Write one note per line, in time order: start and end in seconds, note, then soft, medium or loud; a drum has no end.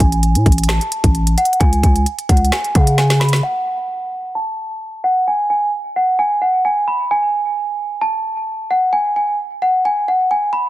0.00 0.37 A1 loud
0.00 0.65 G#5 loud
0.00 kick loud
0.00 closed hi-hat medium
0.12 closed hi-hat medium
0.23 closed hi-hat medium
0.35 0.46 A2 loud
0.35 closed hi-hat medium
0.46 0.80 A1 loud
0.46 kick medium
0.46 closed hi-hat medium
0.52 closed hi-hat medium
0.58 closed hi-hat medium
0.64 closed hi-hat medium
0.68 1.33 A5 medium
0.68 finger snap medium
0.68 snare loud
0.68 closed hi-hat medium
0.81 closed hi-hat medium
0.92 closed hi-hat medium
1.04 1.36 A1 loud
1.04 kick medium
1.04 closed hi-hat medium
1.15 closed hi-hat medium
1.27 closed hi-hat medium
1.38 1.58 F#5 medium
1.38 closed hi-hat medium
1.45 closed hi-hat medium
1.53 closed hi-hat soft
1.60 1.83 C#2 loud
1.60 1.81 G#5 loud
1.60 kick loud
1.60 closed hi-hat medium
1.73 closed hi-hat medium
1.83 2.05 C#2 loud
1.83 2.04 G#5 medium
1.83 kick loud
1.83 closed hi-hat medium
1.96 closed hi-hat medium
2.06 closed hi-hat medium
2.19 closed hi-hat medium
2.29 2.51 C#2 loud
2.29 2.50 F#5 medium
2.29 kick medium
2.29 closed hi-hat medium
2.29 open hi-hat medium
2.37 closed hi-hat medium
2.45 closed hi-hat soft
2.52 2.73 G#5 medium
2.52 finger snap loud
2.52 snare loud
2.52 closed hi-hat medium
2.64 closed hi-hat medium
2.75 3.41 C#3 loud
2.75 2.96 F#5 medium
2.75 kick loud
2.75 closed hi-hat medium
2.87 closed hi-hat medium
2.98 3.19 G#5 medium
2.98 snare medium
2.98 closed hi-hat medium
3.10 snare medium
3.10 closed hi-hat medium
3.20 3.41 B5 medium
3.20 snare loud
3.20 closed hi-hat medium
3.29 closed hi-hat medium
3.33 snare loud
3.33 closed hi-hat soft
3.43 4.31 F#5 loud
4.35 5.00 A5 medium
5.04 5.24 F#5 medium
5.28 5.48 G#5 medium
5.50 5.70 G#5 medium
5.96 6.16 F#5 medium
6.19 6.39 G#5 loud
6.42 6.62 F#5 medium
6.65 6.85 G#5 medium
6.88 7.08 B5 medium
7.11 7.98 G#5 loud
8.01 8.66 A5 medium
8.71 8.91 F#5 medium
8.93 9.13 G#5 loud
9.16 9.37 G#5 medium
9.62 9.83 F#5 medium
9.85 10.06 G#5 medium
10.08 10.29 F#5 medium
10.31 10.51 G#5 medium
10.53 10.69 B5 medium